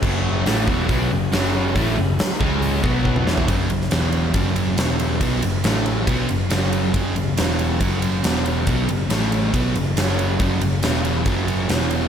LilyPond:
<<
  \new Staff \with { instrumentName = "Tonewheel organ" } { \time 4/4 \key fis \minor \tempo 4 = 139 gis'1~ | gis'4. cis''2 gis'8 | r1 | r1 |
r1 | r1 | r1 | }
  \new Staff \with { instrumentName = "Tonewheel organ" } { \time 4/4 \key fis \minor <fis b>1~ | <fis b>4. cis'4 <b fis'>4 <fis cis'>8 | r1 | r1 |
r1 | r1 | r1 | }
  \new Staff \with { instrumentName = "Distorted electric guitar" } { \clef bass \time 4/4 \key fis \minor <fis, cis fis>4 <a, e a>8 <e, b, e>8 <b, fis b>8 <fis, cis>8 <fis, cis fis>4 | <a, e a>8 <fis, cis>8 r8 <cis gis cis'>4 <b, fis b>4 <e, b, e>8 | <fis, cis fis>8 <fis, cis>8 <e, b, e>4 <fis, cis fis>4 <e, b, e>4 | <b, fis b>8 <fis, cis>8 <a, e a>4 <b, fis b>8 <fis, cis>8 <fis, cis fis>4 |
<fis, cis fis>8 <fis, cis>8 <e, b, e>4 <fis, cis fis>4 <e, b, e>4 | <b, fis b>8 <fis, cis>8 <a, e a>4 <b, fis b>8 <fis, cis>8 <fis, cis fis>4 | <fis, cis fis>8 <fis, cis>8 <e, b, e>4 <fis, cis fis>4 <e, b, e>4 | }
  \new Staff \with { instrumentName = "Distorted electric guitar" } { \clef bass \time 4/4 \key fis \minor <fis, cis fis>4 <a, e a>8 <e, b, e>8 <b, fis b>8 <fis, cis>8 <fis, cis fis>4 | <a, e a>8 <fis, cis>8 r8 <cis gis cis'>4 <b, fis b>4 <e, b, e>8 | r1 | r1 |
r1 | r1 | r1 | }
  \new Staff \with { instrumentName = "Overdriven electric guitar" } { \clef bass \time 4/4 \key fis \minor <fis, cis fis>4 <a, e a>8 <e, b, e>8 <b, fis b>8 <fis, cis>8 <fis, cis fis>4 | <a, e a>8 <fis, cis>8 r8 <cis gis cis'>4 <b, fis b>4 <e, b, e>8 | <fis, cis fis>8 <fis, cis>8 <e, b, e>4 <fis, cis fis>4 <e, b, e>4 | <b, fis b>8 <fis, cis>8 <a, e a>4 <b, fis b>8 <fis, cis>8 <fis, cis fis>4 |
<fis, cis fis>8 <fis, cis>8 <e, b, e>4 <fis, cis fis>4 <e, b, e>4 | <b, fis b>8 <fis, cis>8 <a, e a>4 <b, fis b>8 <fis, cis>8 <fis, cis fis>4 | <fis, cis fis>8 <fis, cis>8 <e, b, e>4 <fis, cis fis>4 <e, b, e>4 | }
  \new Staff \with { instrumentName = "Picked electric bass" } { \clef bass \time 4/4 \key fis \minor fis,,4 a,,8 e,,8 b,,8 fis,,8 fis,,4 | a,,8 fis,,8 r8 cis,4 b,,4 e,,8 | fis,,8 fis,,8 e,,4 fis,,4 e,,4 | b,,8 fis,,8 a,,4 b,,8 fis,,8 fis,,4 |
fis,,8 fis,,8 e,,4 fis,,4 e,,4 | b,,8 fis,,8 a,,4 b,,8 fis,,8 fis,,4 | fis,,8 fis,,8 e,,4 fis,,4 e,,4 | }
  \new DrumStaff \with { instrumentName = "Drums" } \drummode { \time 4/4 <cymc bd>4 <hho sn>8 bd8 <hho bd>4 <hho sn>4 | <hho bd>4 <hho sn>8 bd8 hho8 bd8 bd16 toml16 sn16 tomfh16 | <bd cymr>8 cymr16 sn16 <cymr sn>8 cymr8 <bd cymr>8 cymr8 <cymr sn>8 cymr8 | <bd cymr>8 cymr8 <cymr sn>8 cymr8 <bd cymr>8 cymr8 <cymr sn>8 cymr8 |
<bd cymr>8 cymr8 <cymr sn>8 cymr8 <bd cymr>8 cymr8 <cymr sn>8 cymr8 | <bd cymr>8 cymr8 <cymr sn>8 cymr8 <bd cymr>8 cymr8 <cymr sn>8 cymr8 | <bd cymr>8 cymr8 <cymr sn>8 cymr8 <bd cymr>8 cymr8 <cymr sn>8 cymr8 | }
>>